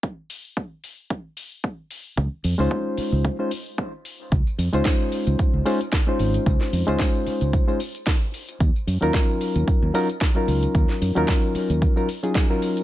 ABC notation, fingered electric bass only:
X:1
M:4/4
L:1/16
Q:"Swing 16ths" 1/4=112
K:Db
V:1 name="Fingered electric bass" clef=bass
z16 | D,, z F,, D,, z3 D,, z8 | D,, z F,, D,, z3 D,, z D,, z4 A,,, z | D,, z F,, D,, z3 D,, z8 |
E,, z G,, E,, z3 E,, z E,, z4 D,, z | E,, z G,, E,, z3 E,, z8 |]